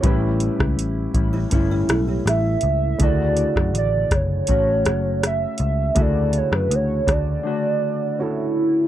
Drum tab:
HH |x-x-x-x-x-x-x-x-|x-x-x-x-x-x-x-x-|x-x-x-x---------|
SD |---r------r-r---|---r--r---r-r---|---r--r---------|
BD |o--o--o-o-------|o--o--o-o-------|o-----o---------|